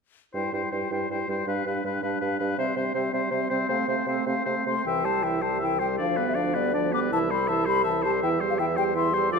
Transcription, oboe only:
0, 0, Header, 1, 2, 480
1, 0, Start_track
1, 0, Key_signature, 0, "major"
1, 0, Tempo, 371978
1, 445, Time_signature, 6, 3, 24, 8
1, 4759, Tempo, 381922
1, 8599, Tempo, 368777
1, 12045, End_track
2, 0, Start_track
2, 0, Title_t, "Oboe"
2, 0, Program_c, 0, 68
2, 436, Note_on_c, 0, 72, 35
2, 679, Note_off_c, 0, 72, 0
2, 698, Note_on_c, 0, 72, 28
2, 918, Note_off_c, 0, 72, 0
2, 926, Note_on_c, 0, 72, 28
2, 1167, Note_off_c, 0, 72, 0
2, 1196, Note_on_c, 0, 72, 28
2, 1423, Note_off_c, 0, 72, 0
2, 1436, Note_on_c, 0, 72, 27
2, 1662, Note_off_c, 0, 72, 0
2, 1682, Note_on_c, 0, 72, 30
2, 1900, Note_off_c, 0, 72, 0
2, 1908, Note_on_c, 0, 71, 36
2, 2140, Note_off_c, 0, 71, 0
2, 2152, Note_on_c, 0, 71, 29
2, 2382, Note_off_c, 0, 71, 0
2, 2398, Note_on_c, 0, 71, 31
2, 2617, Note_off_c, 0, 71, 0
2, 2625, Note_on_c, 0, 71, 32
2, 2845, Note_off_c, 0, 71, 0
2, 2853, Note_on_c, 0, 71, 33
2, 3087, Note_off_c, 0, 71, 0
2, 3092, Note_on_c, 0, 71, 37
2, 3325, Note_off_c, 0, 71, 0
2, 3338, Note_on_c, 0, 72, 44
2, 3565, Note_off_c, 0, 72, 0
2, 3573, Note_on_c, 0, 72, 37
2, 3800, Note_off_c, 0, 72, 0
2, 3805, Note_on_c, 0, 72, 39
2, 4035, Note_off_c, 0, 72, 0
2, 4045, Note_on_c, 0, 72, 40
2, 4266, Note_off_c, 0, 72, 0
2, 4273, Note_on_c, 0, 72, 39
2, 4510, Note_off_c, 0, 72, 0
2, 4517, Note_on_c, 0, 72, 43
2, 4754, Note_off_c, 0, 72, 0
2, 4762, Note_on_c, 0, 72, 51
2, 4993, Note_off_c, 0, 72, 0
2, 5010, Note_on_c, 0, 72, 40
2, 5238, Note_off_c, 0, 72, 0
2, 5252, Note_on_c, 0, 72, 38
2, 5484, Note_off_c, 0, 72, 0
2, 5490, Note_on_c, 0, 72, 41
2, 5717, Note_off_c, 0, 72, 0
2, 5724, Note_on_c, 0, 72, 37
2, 5974, Note_off_c, 0, 72, 0
2, 5984, Note_on_c, 0, 72, 34
2, 6225, Note_off_c, 0, 72, 0
2, 6247, Note_on_c, 0, 76, 37
2, 6477, Note_on_c, 0, 72, 33
2, 6496, Note_off_c, 0, 76, 0
2, 6699, Note_on_c, 0, 76, 32
2, 6718, Note_off_c, 0, 72, 0
2, 6935, Note_on_c, 0, 72, 35
2, 6953, Note_off_c, 0, 76, 0
2, 7151, Note_off_c, 0, 72, 0
2, 7158, Note_on_c, 0, 76, 31
2, 7404, Note_on_c, 0, 72, 35
2, 7422, Note_off_c, 0, 76, 0
2, 7633, Note_off_c, 0, 72, 0
2, 7640, Note_on_c, 0, 74, 39
2, 7882, Note_on_c, 0, 71, 36
2, 7900, Note_off_c, 0, 74, 0
2, 8109, Note_on_c, 0, 74, 36
2, 8128, Note_off_c, 0, 71, 0
2, 8352, Note_on_c, 0, 71, 35
2, 8371, Note_off_c, 0, 74, 0
2, 8594, Note_off_c, 0, 71, 0
2, 8600, Note_on_c, 0, 74, 35
2, 8841, Note_on_c, 0, 71, 36
2, 8860, Note_off_c, 0, 74, 0
2, 9084, Note_off_c, 0, 71, 0
2, 9101, Note_on_c, 0, 76, 45
2, 9335, Note_on_c, 0, 72, 40
2, 9354, Note_off_c, 0, 76, 0
2, 9557, Note_on_c, 0, 76, 40
2, 9577, Note_off_c, 0, 72, 0
2, 9787, Note_on_c, 0, 72, 42
2, 9807, Note_off_c, 0, 76, 0
2, 10018, Note_off_c, 0, 72, 0
2, 10026, Note_on_c, 0, 76, 39
2, 10267, Note_on_c, 0, 72, 44
2, 10287, Note_off_c, 0, 76, 0
2, 10512, Note_off_c, 0, 72, 0
2, 10520, Note_on_c, 0, 76, 52
2, 10763, Note_on_c, 0, 72, 44
2, 10783, Note_off_c, 0, 76, 0
2, 11003, Note_on_c, 0, 76, 42
2, 11022, Note_off_c, 0, 72, 0
2, 11233, Note_on_c, 0, 72, 42
2, 11253, Note_off_c, 0, 76, 0
2, 11475, Note_off_c, 0, 72, 0
2, 11481, Note_on_c, 0, 76, 39
2, 11717, Note_on_c, 0, 72, 43
2, 11736, Note_off_c, 0, 76, 0
2, 11952, Note_off_c, 0, 72, 0
2, 11960, Note_on_c, 0, 74, 51
2, 12045, Note_off_c, 0, 74, 0
2, 12045, End_track
0, 0, End_of_file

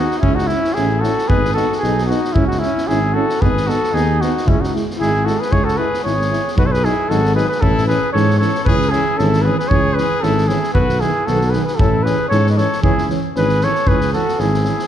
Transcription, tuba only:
0, 0, Header, 1, 2, 480
1, 0, Start_track
1, 0, Key_signature, 4, "minor"
1, 0, Tempo, 527241
1, 216, Time_signature, 2, 2, 24, 8
1, 7416, Tempo, 518583
1, 13641, End_track
2, 0, Start_track
2, 0, Title_t, "Tuba"
2, 0, Program_c, 0, 58
2, 208, Note_on_c, 0, 37, 95
2, 475, Note_off_c, 0, 37, 0
2, 703, Note_on_c, 0, 33, 97
2, 966, Note_off_c, 0, 33, 0
2, 1180, Note_on_c, 0, 32, 78
2, 1444, Note_off_c, 0, 32, 0
2, 1666, Note_on_c, 0, 35, 92
2, 1929, Note_off_c, 0, 35, 0
2, 2146, Note_on_c, 0, 37, 74
2, 2409, Note_off_c, 0, 37, 0
2, 2627, Note_on_c, 0, 32, 89
2, 2890, Note_off_c, 0, 32, 0
2, 3113, Note_on_c, 0, 32, 72
2, 3375, Note_off_c, 0, 32, 0
2, 3583, Note_on_c, 0, 39, 92
2, 3848, Note_off_c, 0, 39, 0
2, 4059, Note_on_c, 0, 37, 78
2, 4324, Note_off_c, 0, 37, 0
2, 4552, Note_on_c, 0, 32, 81
2, 4814, Note_off_c, 0, 32, 0
2, 5029, Note_on_c, 0, 37, 81
2, 5292, Note_off_c, 0, 37, 0
2, 5511, Note_on_c, 0, 32, 85
2, 5773, Note_off_c, 0, 32, 0
2, 5981, Note_on_c, 0, 35, 89
2, 6245, Note_off_c, 0, 35, 0
2, 6467, Note_on_c, 0, 32, 90
2, 6729, Note_off_c, 0, 32, 0
2, 6932, Note_on_c, 0, 33, 78
2, 7197, Note_off_c, 0, 33, 0
2, 7419, Note_on_c, 0, 44, 92
2, 7685, Note_off_c, 0, 44, 0
2, 7901, Note_on_c, 0, 37, 84
2, 8167, Note_off_c, 0, 37, 0
2, 8382, Note_on_c, 0, 32, 111
2, 8649, Note_off_c, 0, 32, 0
2, 8866, Note_on_c, 0, 37, 91
2, 9132, Note_off_c, 0, 37, 0
2, 9350, Note_on_c, 0, 32, 105
2, 9616, Note_off_c, 0, 32, 0
2, 9836, Note_on_c, 0, 35, 81
2, 10100, Note_off_c, 0, 35, 0
2, 10315, Note_on_c, 0, 35, 92
2, 10579, Note_off_c, 0, 35, 0
2, 10793, Note_on_c, 0, 33, 82
2, 11057, Note_off_c, 0, 33, 0
2, 11273, Note_on_c, 0, 44, 101
2, 11536, Note_off_c, 0, 44, 0
2, 11758, Note_on_c, 0, 37, 76
2, 12019, Note_off_c, 0, 37, 0
2, 12240, Note_on_c, 0, 32, 108
2, 12499, Note_off_c, 0, 32, 0
2, 12711, Note_on_c, 0, 37, 85
2, 12972, Note_off_c, 0, 37, 0
2, 13194, Note_on_c, 0, 32, 95
2, 13452, Note_off_c, 0, 32, 0
2, 13641, End_track
0, 0, End_of_file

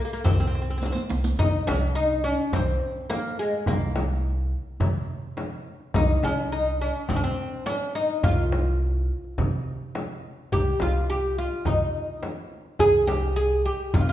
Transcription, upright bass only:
0, 0, Header, 1, 2, 480
1, 0, Start_track
1, 0, Tempo, 570342
1, 1172, Time_signature, 4, 2, 24, 8
1, 11888, End_track
2, 0, Start_track
2, 0, Title_t, "Upright bass"
2, 0, Program_c, 0, 32
2, 219, Note_on_c, 0, 36, 79
2, 757, Note_off_c, 0, 36, 0
2, 933, Note_on_c, 0, 36, 73
2, 1113, Note_off_c, 0, 36, 0
2, 1178, Note_on_c, 0, 36, 84
2, 1356, Note_off_c, 0, 36, 0
2, 1415, Note_on_c, 0, 36, 73
2, 1954, Note_off_c, 0, 36, 0
2, 2138, Note_on_c, 0, 36, 79
2, 2316, Note_off_c, 0, 36, 0
2, 3089, Note_on_c, 0, 36, 95
2, 3810, Note_off_c, 0, 36, 0
2, 4042, Note_on_c, 0, 48, 89
2, 4765, Note_off_c, 0, 48, 0
2, 5004, Note_on_c, 0, 36, 82
2, 5187, Note_off_c, 0, 36, 0
2, 5244, Note_on_c, 0, 36, 74
2, 5787, Note_off_c, 0, 36, 0
2, 5970, Note_on_c, 0, 36, 80
2, 6150, Note_off_c, 0, 36, 0
2, 6928, Note_on_c, 0, 36, 99
2, 7649, Note_off_c, 0, 36, 0
2, 7893, Note_on_c, 0, 48, 91
2, 8613, Note_off_c, 0, 48, 0
2, 8855, Note_on_c, 0, 36, 80
2, 9034, Note_off_c, 0, 36, 0
2, 9093, Note_on_c, 0, 36, 74
2, 9632, Note_off_c, 0, 36, 0
2, 9814, Note_on_c, 0, 36, 81
2, 9993, Note_off_c, 0, 36, 0
2, 10776, Note_on_c, 0, 36, 91
2, 11495, Note_off_c, 0, 36, 0
2, 11734, Note_on_c, 0, 48, 97
2, 11888, Note_off_c, 0, 48, 0
2, 11888, End_track
0, 0, End_of_file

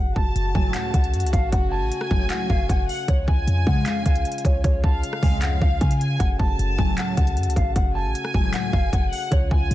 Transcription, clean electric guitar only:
0, 0, Header, 1, 2, 480
1, 0, Start_track
1, 0, Key_signature, 3, "minor"
1, 0, Tempo, 389610
1, 1879, Time_signature, 4, 2, 24, 8
1, 12005, End_track
2, 0, Start_track
2, 0, Title_t, "Clean electric guitar"
2, 0, Program_c, 0, 27
2, 0, Note_on_c, 0, 78, 88
2, 151, Note_off_c, 0, 78, 0
2, 196, Note_on_c, 0, 81, 84
2, 394, Note_off_c, 0, 81, 0
2, 681, Note_on_c, 0, 80, 83
2, 877, Note_off_c, 0, 80, 0
2, 919, Note_on_c, 0, 78, 77
2, 1116, Note_off_c, 0, 78, 0
2, 1155, Note_on_c, 0, 78, 73
2, 1608, Note_off_c, 0, 78, 0
2, 1641, Note_on_c, 0, 77, 87
2, 1837, Note_off_c, 0, 77, 0
2, 1877, Note_on_c, 0, 78, 89
2, 2075, Note_off_c, 0, 78, 0
2, 2114, Note_on_c, 0, 81, 89
2, 2313, Note_off_c, 0, 81, 0
2, 2603, Note_on_c, 0, 80, 78
2, 2798, Note_off_c, 0, 80, 0
2, 2836, Note_on_c, 0, 78, 78
2, 3034, Note_off_c, 0, 78, 0
2, 3077, Note_on_c, 0, 77, 83
2, 3275, Note_off_c, 0, 77, 0
2, 3320, Note_on_c, 0, 78, 87
2, 3770, Note_off_c, 0, 78, 0
2, 3801, Note_on_c, 0, 73, 87
2, 3997, Note_off_c, 0, 73, 0
2, 4040, Note_on_c, 0, 80, 89
2, 4236, Note_off_c, 0, 80, 0
2, 4522, Note_on_c, 0, 78, 79
2, 4718, Note_off_c, 0, 78, 0
2, 4757, Note_on_c, 0, 77, 87
2, 4955, Note_off_c, 0, 77, 0
2, 4997, Note_on_c, 0, 77, 74
2, 5449, Note_off_c, 0, 77, 0
2, 5482, Note_on_c, 0, 73, 78
2, 5678, Note_off_c, 0, 73, 0
2, 5715, Note_on_c, 0, 73, 93
2, 5914, Note_off_c, 0, 73, 0
2, 5961, Note_on_c, 0, 81, 86
2, 6157, Note_off_c, 0, 81, 0
2, 6448, Note_on_c, 0, 80, 74
2, 6641, Note_off_c, 0, 80, 0
2, 6679, Note_on_c, 0, 78, 85
2, 6876, Note_off_c, 0, 78, 0
2, 6921, Note_on_c, 0, 77, 85
2, 7117, Note_off_c, 0, 77, 0
2, 7156, Note_on_c, 0, 80, 90
2, 7608, Note_off_c, 0, 80, 0
2, 7632, Note_on_c, 0, 78, 82
2, 7832, Note_off_c, 0, 78, 0
2, 7875, Note_on_c, 0, 81, 80
2, 8073, Note_off_c, 0, 81, 0
2, 8361, Note_on_c, 0, 80, 84
2, 8557, Note_off_c, 0, 80, 0
2, 8602, Note_on_c, 0, 78, 76
2, 8797, Note_off_c, 0, 78, 0
2, 8838, Note_on_c, 0, 78, 75
2, 9290, Note_off_c, 0, 78, 0
2, 9321, Note_on_c, 0, 77, 86
2, 9517, Note_off_c, 0, 77, 0
2, 9558, Note_on_c, 0, 78, 88
2, 9755, Note_off_c, 0, 78, 0
2, 9796, Note_on_c, 0, 81, 89
2, 9994, Note_off_c, 0, 81, 0
2, 10284, Note_on_c, 0, 80, 80
2, 10479, Note_off_c, 0, 80, 0
2, 10516, Note_on_c, 0, 78, 78
2, 10714, Note_off_c, 0, 78, 0
2, 10755, Note_on_c, 0, 77, 82
2, 10953, Note_off_c, 0, 77, 0
2, 10999, Note_on_c, 0, 78, 86
2, 11450, Note_off_c, 0, 78, 0
2, 11480, Note_on_c, 0, 73, 88
2, 11676, Note_off_c, 0, 73, 0
2, 11720, Note_on_c, 0, 80, 89
2, 11917, Note_off_c, 0, 80, 0
2, 12005, End_track
0, 0, End_of_file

